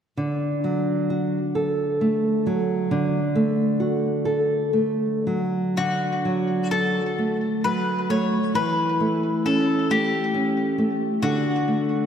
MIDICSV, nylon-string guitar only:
0, 0, Header, 1, 2, 480
1, 0, Start_track
1, 0, Key_signature, 2, "major"
1, 0, Tempo, 909091
1, 91, Time_signature, 6, 3, 24, 8
1, 2009, Tempo, 938967
1, 2489, Tempo, 1034483
1, 2969, Tempo, 933126
1, 3929, Tempo, 895522
1, 6296, End_track
2, 0, Start_track
2, 0, Title_t, "Nylon-string guitar"
2, 0, Program_c, 0, 24
2, 92, Note_on_c, 0, 50, 40
2, 338, Note_on_c, 0, 54, 30
2, 581, Note_on_c, 0, 66, 31
2, 725, Note_off_c, 0, 54, 0
2, 819, Note_on_c, 0, 69, 30
2, 965, Note_off_c, 0, 66, 0
2, 1062, Note_on_c, 0, 57, 33
2, 1202, Note_off_c, 0, 69, 0
2, 1302, Note_on_c, 0, 54, 37
2, 1442, Note_off_c, 0, 57, 0
2, 1515, Note_off_c, 0, 50, 0
2, 1537, Note_on_c, 0, 50, 47
2, 1679, Note_off_c, 0, 54, 0
2, 1771, Note_on_c, 0, 57, 39
2, 2006, Note_on_c, 0, 66, 37
2, 2146, Note_off_c, 0, 57, 0
2, 2238, Note_on_c, 0, 69, 37
2, 2386, Note_off_c, 0, 66, 0
2, 2482, Note_on_c, 0, 57, 35
2, 2630, Note_off_c, 0, 69, 0
2, 2732, Note_on_c, 0, 54, 33
2, 2874, Note_off_c, 0, 57, 0
2, 2949, Note_off_c, 0, 50, 0
2, 2967, Note_on_c, 0, 50, 38
2, 2968, Note_off_c, 0, 54, 0
2, 3213, Note_on_c, 0, 54, 30
2, 3450, Note_on_c, 0, 66, 30
2, 3594, Note_off_c, 0, 54, 0
2, 3692, Note_on_c, 0, 57, 27
2, 3833, Note_off_c, 0, 66, 0
2, 3930, Note_on_c, 0, 54, 31
2, 4077, Note_off_c, 0, 57, 0
2, 4171, Note_on_c, 0, 57, 30
2, 4319, Note_off_c, 0, 54, 0
2, 4393, Note_off_c, 0, 50, 0
2, 4412, Note_on_c, 0, 52, 38
2, 4414, Note_off_c, 0, 57, 0
2, 4656, Note_on_c, 0, 57, 31
2, 4899, Note_on_c, 0, 61, 31
2, 5044, Note_off_c, 0, 57, 0
2, 5139, Note_on_c, 0, 57, 29
2, 5281, Note_off_c, 0, 61, 0
2, 5376, Note_on_c, 0, 61, 34
2, 5517, Note_off_c, 0, 57, 0
2, 5611, Note_on_c, 0, 57, 33
2, 5755, Note_off_c, 0, 61, 0
2, 5827, Note_off_c, 0, 52, 0
2, 5848, Note_on_c, 0, 50, 42
2, 5850, Note_off_c, 0, 57, 0
2, 6090, Note_on_c, 0, 57, 32
2, 6296, Note_off_c, 0, 50, 0
2, 6296, Note_off_c, 0, 57, 0
2, 6296, End_track
0, 0, End_of_file